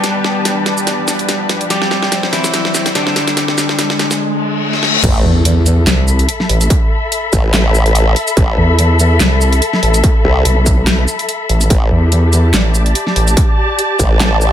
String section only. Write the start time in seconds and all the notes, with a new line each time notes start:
Already playing: G4 D5 A5
1.70 C4
5.04 A4
5.57 E5
5.84 B5
11.70 G4
12.27 A5
12.54 D5